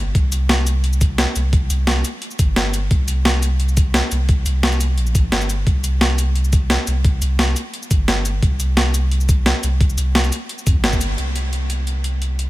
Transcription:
0.00 0.14 G1 medium
0.15 1.26 C2 loud
0.15 kick loud
0.15 closed hi-hat medium
0.32 closed hi-hat loud
0.32 cabasa medium
0.49 snare loud
0.49 closed hi-hat medium
0.67 closed hi-hat medium
0.67 cabasa medium
0.84 closed hi-hat medium
0.93 cabasa soft
1.01 kick loud
1.01 closed hi-hat medium
1.01 cabasa medium
1.18 snare loud
1.18 closed hi-hat medium
1.36 1.69 C2 medium
1.36 closed hi-hat medium
1.36 cabasa medium
1.53 kick loud
1.53 closed hi-hat medium
1.70 2.03 C2 medium
1.70 closed hi-hat loud
1.70 cabasa medium
1.87 snare loud
1.87 closed hi-hat medium
2.04 closed hi-hat medium
2.04 cabasa medium
2.22 closed hi-hat medium
2.31 cabasa soft
2.39 2.55 G1 loud
2.39 kick loud
2.39 closed hi-hat medium
2.39 cabasa medium
2.56 2.89 G1 medium
2.56 snare loud
2.56 closed hi-hat medium
2.74 closed hi-hat medium
2.74 cabasa medium
2.91 4.02 C2 loud
2.91 kick loud
2.91 closed hi-hat medium
3.08 closed hi-hat medium
3.08 cabasa medium
3.25 snare loud
3.25 closed hi-hat medium
3.42 closed hi-hat medium
3.42 cabasa medium
3.60 closed hi-hat medium
3.69 cabasa soft
3.77 kick loud
3.77 closed hi-hat medium
3.77 cabasa medium
3.94 snare loud
3.94 closed hi-hat medium
4.11 4.45 C2 medium
4.11 closed hi-hat medium
4.11 cabasa medium
4.29 kick loud
4.29 closed hi-hat medium
4.46 4.99 C2 loud
4.46 closed hi-hat medium
4.46 cabasa medium
4.63 snare loud
4.63 closed hi-hat medium
4.72 cabasa soft
4.81 closed hi-hat medium
4.81 cabasa medium
4.98 5.31 A#1 loud
4.98 closed hi-hat medium
5.07 cabasa soft
5.15 kick loud
5.15 closed hi-hat medium
5.15 cabasa medium
5.32 5.65 G1 medium
5.32 snare loud
5.32 closed hi-hat medium
5.41 cabasa soft
5.50 closed hi-hat medium
5.50 cabasa medium
5.67 6.78 C2 medium
5.67 kick loud
5.67 closed hi-hat medium
5.84 closed hi-hat medium
5.84 cabasa medium
6.01 snare loud
6.01 closed hi-hat medium
6.18 closed hi-hat medium
6.18 cabasa medium
6.35 closed hi-hat medium
6.44 cabasa soft
6.53 kick loud
6.53 closed hi-hat medium
6.53 cabasa medium
6.70 snare loud
6.70 closed hi-hat medium
6.87 7.20 C2 medium
6.87 closed hi-hat medium
6.87 cabasa medium
7.04 kick loud
7.04 closed hi-hat medium
7.22 7.55 C2 loud
7.22 closed hi-hat medium
7.22 cabasa medium
7.39 snare loud
7.39 closed hi-hat medium
7.56 closed hi-hat medium
7.56 cabasa medium
7.74 closed hi-hat medium
7.83 cabasa soft
7.91 8.06 G1 loud
7.91 kick loud
7.91 closed hi-hat medium
7.91 cabasa medium
8.08 8.41 G1 medium
8.08 snare loud
8.08 closed hi-hat medium
8.25 closed hi-hat medium
8.25 cabasa medium
8.43 9.54 C2 loud
8.43 kick loud
8.43 closed hi-hat medium
8.60 closed hi-hat medium
8.60 cabasa medium
8.77 snare loud
8.77 closed hi-hat medium
8.94 closed hi-hat medium
8.94 cabasa medium
9.11 closed hi-hat medium
9.21 cabasa soft
9.29 kick loud
9.29 closed hi-hat medium
9.29 cabasa medium
9.46 snare loud
9.46 closed hi-hat medium
9.63 9.96 C2 loud
9.63 closed hi-hat medium
9.63 cabasa medium
9.81 kick loud
9.81 closed hi-hat medium
9.90 cabasa soft
9.98 10.31 C2 medium
9.98 closed hi-hat medium
9.98 cabasa medium
10.15 snare loud
10.15 closed hi-hat medium
10.24 cabasa soft
10.32 closed hi-hat medium
10.32 cabasa medium
10.49 closed hi-hat medium
10.58 cabasa soft
10.67 10.77 F2 loud
10.67 kick loud
10.67 closed hi-hat medium
10.67 cabasa medium
10.76 11.17 G1 medium
10.84 snare loud
10.84 closed hi-hat medium
10.93 kick medium
10.93 cabasa soft
11.01 closed hi-hat medium
11.01 cabasa medium
11.18 12.50 C2 medium
11.18 closed hi-hat medium
11.36 closed hi-hat medium
11.53 closed hi-hat medium
11.70 closed hi-hat medium
11.87 closed hi-hat medium
12.04 closed hi-hat medium
12.22 closed hi-hat medium
12.39 closed hi-hat medium

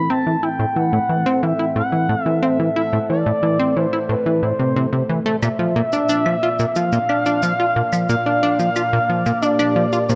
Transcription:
0.00 5.42 A2 medium
0.00 5.42 A3 medium
0.00 7.52 C4 medium
0.00 0.85 A4 medium
0.00 0.11 B5 loud
0.10 0.25 C4 loud
0.10 0.44 A5 loud
0.27 0.37 E3 medium
0.43 0.49 E4 medium
0.43 0.77 G5 loud
0.59 0.66 A2 loud
0.76 0.92 E3 medium
0.76 1.44 F#5 loud
0.86 7.36 A4 medium
0.93 0.99 A2 loud
1.09 1.25 E3 medium
1.26 1.42 C4 loud
1.43 1.53 E3 medium
1.43 1.76 E5 loud
1.59 1.66 E4 medium
1.76 1.82 A2 loud
1.76 2.23 F#5 loud
1.92 2.08 E3 medium
2.09 2.15 A2 loud
2.23 2.41 E3 medium
2.23 2.43 E5 loud
2.43 2.58 C4 loud
2.43 2.76 E5 loud
2.60 2.70 E3 medium
2.76 2.82 E4 medium
2.76 3.07 E5 loud
2.93 2.99 A2 loud
3.09 3.25 E3 medium
3.09 3.78 D5 loud
3.26 3.32 A2 loud
3.43 3.58 E3 medium
3.59 3.75 C4 loud
3.76 3.87 E3 medium
3.76 4.12 C5 medium
3.93 3.99 E4 medium
4.09 4.16 A2 medium
4.09 4.45 B4 medium
4.26 4.42 E3 medium
4.43 4.53 A2 medium
4.43 5.10 C5 medium
4.59 4.75 C3 medium
4.76 4.86 C3 medium
4.93 5.03 C3 medium
5.09 5.20 E3 medium
5.26 5.36 A3 loud
5.43 5.49 A#2 loud
5.43 10.15 A#2 medium
5.43 6.78 E5 loud
5.43 cabasa medium
5.43 claves soft
5.59 5.75 F3 medium
5.68 9.50 F4 medium
5.76 5.82 A#2 loud
5.86 10.15 A#3 medium
5.93 6.08 D4 medium
5.93 cabasa medium
6.09 6.25 D4 loud
6.09 cabasa medium
6.26 6.36 F3 medium
6.26 claves soft
6.43 6.49 F4 medium
6.59 6.66 A#2 loud
6.59 cabasa soft
6.76 6.92 F3 medium
6.76 8.08 F5 loud
6.76 cabasa medium
6.91 6.99 A#2 loud
6.91 10.15 D5 medium
6.91 cabasa soft
7.09 7.25 D4 medium
7.09 claves soft
7.26 7.42 D4 medium
7.26 cabasa medium
7.43 7.53 F3 medium
7.43 cabasa medium
7.60 7.66 F4 medium
7.76 7.82 A#2 medium
7.93 8.08 F3 medium
7.93 cabasa medium
7.93 claves soft
8.09 8.16 A#2 loud
8.09 9.43 F5 loud
8.09 cabasa medium
8.26 8.42 D4 medium
8.43 8.58 D4 loud
8.59 8.70 F3 medium
8.59 cabasa medium
8.76 8.82 F4 medium
8.76 cabasa medium
8.76 claves soft
8.93 8.99 A#2 loud
9.10 9.25 F3 medium
9.26 9.32 A#2 loud
9.26 10.15 G4 medium
9.26 cabasa soft
9.42 9.58 D4 medium
9.42 10.10 D5 loud
9.42 cabasa medium
9.59 9.75 D4 loud
9.59 cabasa soft
9.59 claves soft
9.76 9.86 F3 medium
9.93 9.99 F4 medium
9.93 cabasa soft
10.09 10.15 A#2 loud
10.09 10.15 C5 loud
10.09 cabasa medium

